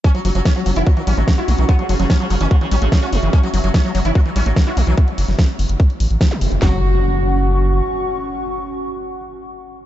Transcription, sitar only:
0.04 0.09 C#4 medium
0.15 0.19 F#3 medium
0.25 0.30 F#3 medium
0.35 0.40 F#3 medium
0.45 0.50 C#4 loud
0.56 0.61 F#3 medium
0.66 0.71 F#3 medium
0.76 0.81 E4 medium
0.87 0.91 F#3 medium
0.97 1.02 F#3 medium
1.07 1.12 C#4 medium
1.17 1.22 F#3 medium
1.28 1.32 F#3 medium
1.38 1.43 E4 medium
1.48 1.53 F#3 medium
1.58 1.63 F#3 medium
1.69 1.74 B3 loud
1.79 1.84 C#3 medium
1.89 1.94 C#3 medium
2.00 2.04 C#3 medium
2.10 2.15 C#4 loud
2.20 2.25 C#3 medium
2.30 2.35 C#3 medium
2.41 2.45 C#4 medium
2.51 2.56 C#3 medium
2.61 2.66 C#3 medium
2.71 2.76 C#4 medium
2.82 2.87 C#3 medium
2.92 2.97 C#3 medium
3.02 3.07 C#4 medium
3.13 3.17 C#3 medium
3.23 3.28 C#3 medium
3.33 3.38 C#4 loud
3.43 3.48 F#3 medium
3.54 3.58 F#3 medium
3.64 3.69 F#3 medium
3.74 3.79 C#4 loud
3.85 3.89 F#3 medium
3.95 4.00 F#3 medium
4.05 4.10 E4 medium
4.15 4.20 F#3 medium
4.26 4.30 F#3 medium
4.36 4.41 C#4 medium
4.46 4.51 F#3 medium
4.57 4.61 F#3 medium
4.67 4.71 E4 loud
4.77 4.82 F#3 medium
4.87 4.92 F#3 medium
6.62 9.86 F#4 medium

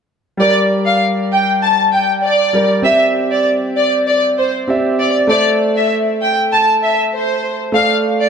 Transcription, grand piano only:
0.37 2.49 G3 medium
0.37 2.50 G4 medium
0.37 2.51 A#4 medium
0.43 2.52 D5 medium
2.53 2.84 G3 soft
2.53 2.83 G4 soft
2.53 2.85 A#4 soft
2.53 2.84 D5 medium
2.82 4.64 C4 medium
2.82 4.65 G4 medium
2.82 4.65 D5 medium
2.88 4.66 E5 medium
4.67 5.29 C4 medium
4.67 5.30 G4 medium
4.67 5.30 D5 medium
4.67 5.31 E5 medium
5.27 7.69 A3 medium
5.27 7.70 A4 medium
5.27 7.71 C5 medium
5.33 7.72 E5 medium
7.72 8.29 A3 medium
7.72 8.29 A4 medium
7.72 8.29 D5 medium
7.78 8.29 F5 medium

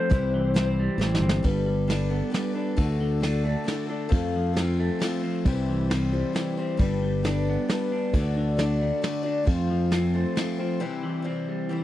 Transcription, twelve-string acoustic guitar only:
0.00 0.11 F4 medium
0.00 0.11 A4 medium
0.10 0.55 C3 medium
0.10 0.55 E3 medium
0.10 0.53 G3 medium
0.10 0.53 C4 medium
0.10 0.54 E4 medium
0.10 0.55 C5 medium
0.54 0.97 G3 medium
0.54 0.98 C4 medium
0.54 1.00 E4 medium
0.54 1.00 C5 medium
0.98 1.41 G3 medium
0.98 1.43 C4 medium
0.98 1.43 E4 medium
0.98 1.44 C5 medium
1.43 1.86 G3 medium
1.43 1.87 D4 medium
1.43 1.88 A4 medium
1.43 1.88 B4 medium
1.87 2.10 G3 medium
1.87 2.10 D4 medium
1.87 2.09 A4 medium
1.87 2.08 B4 medium
2.09 2.30 D4 soft
2.09 2.31 A4 soft
2.09 2.31 B4 soft
2.30 2.54 G3 medium
2.30 2.54 D4 medium
2.30 2.53 A4 medium
2.30 2.52 B4 medium
2.53 2.76 D4 soft
2.53 2.77 A4 soft
2.53 2.77 B4 soft
2.76 3.22 D3 medium
2.76 3.19 A3 medium
2.76 3.20 D4 medium
2.76 3.21 F#4 medium
2.76 3.23 A4 medium
3.20 3.43 A3 medium
3.20 3.44 D4 medium
3.20 3.44 F#4 medium
3.20 3.42 A4 medium
3.43 3.64 D4 soft
3.43 3.65 F#4 soft
3.43 3.66 A4 medium
3.64 3.88 A3 medium
3.64 3.88 D4 medium
3.64 3.88 F#4 medium
3.64 3.85 A4 medium
3.86 4.09 D4 soft
3.86 4.09 F#4 soft
3.86 4.09 A4 medium
4.09 4.55 F3 medium
4.09 4.52 A3 medium
4.09 4.54 C4 medium
4.09 4.55 F4 medium
4.09 4.56 A4 medium
4.53 4.98 A3 medium
4.53 4.99 C4 medium
4.53 4.99 F4 medium
4.53 5.01 A4 medium
4.99 5.45 A3 medium
4.99 5.45 C4 medium
4.99 5.45 F4 medium
4.99 5.46 A4 medium
5.46 5.90 C3 medium
5.46 5.90 E3 medium
5.46 5.90 G3 medium
5.46 5.90 C4 medium
5.46 5.91 E4 medium
5.46 5.91 C5 medium
5.90 6.12 G3 medium
5.90 6.12 C4 medium
5.90 6.12 E4 medium
5.90 6.11 C5 medium
6.12 6.32 G3 soft
6.12 6.33 C4 soft
6.12 6.33 E4 soft
6.12 6.34 C5 soft
6.33 6.56 G3 medium
6.33 6.57 C4 medium
6.33 6.57 E4 medium
6.33 6.56 C5 medium
6.57 6.76 G3 soft
6.57 6.78 C4 soft
6.57 6.79 E4 soft
6.57 6.80 C5 medium
6.77 7.22 G3 medium
6.77 7.23 D4 medium
6.77 7.24 A4 medium
6.77 7.24 B4 medium
7.23 7.67 G3 medium
7.23 7.68 D4 medium
7.23 7.69 A4 medium
7.23 7.70 B4 medium
7.68 8.13 G3 medium
7.68 8.14 D4 medium
7.68 8.15 A4 medium
7.68 8.15 B4 medium
8.13 8.58 D3 medium
8.13 8.56 A3 medium
8.13 8.56 D4 medium
8.13 8.57 F#4 medium
8.13 8.58 D5 medium
8.57 9.00 A3 medium
8.57 9.01 D4 medium
8.57 9.02 F#4 medium
8.57 9.03 D5 medium
9.02 9.24 A3 medium
9.02 9.24 D4 medium
9.02 9.22 F#4 medium
9.02 9.21 D5 medium
9.23 9.45 D4 soft
9.23 9.45 F#4 soft
9.23 9.45 D5 medium
9.44 9.90 F3 medium
9.44 9.89 A3 medium
9.44 9.91 C4 medium
9.44 9.91 F4 medium
9.44 9.92 C5 medium
9.91 10.14 A3 medium
9.91 10.14 C4 medium
9.91 10.14 F4 medium
9.91 10.12 C5 medium
10.14 10.36 C4 soft
10.14 10.36 F4 soft
10.14 10.36 C5 medium
10.36 10.58 A3 medium
10.36 10.59 C4 medium
10.36 10.58 F4 medium
10.36 10.57 C5 medium
10.58 10.80 C4 soft
10.58 10.81 F4 soft
10.58 10.81 C5 medium
10.80 11.25 C3 medium
10.80 11.25 E3 medium
10.80 11.21 G3 medium
10.80 11.23 C4 medium
10.80 11.23 E4 medium
10.80 11.24 C5 medium
11.22 11.68 G3 medium
11.22 11.69 C4 medium
11.22 11.69 E4 medium
11.22 11.70 C5 medium
11.69 11.84 G3 medium
11.69 11.84 C4 medium
11.69 11.84 E4 medium
11.69 11.84 C5 medium

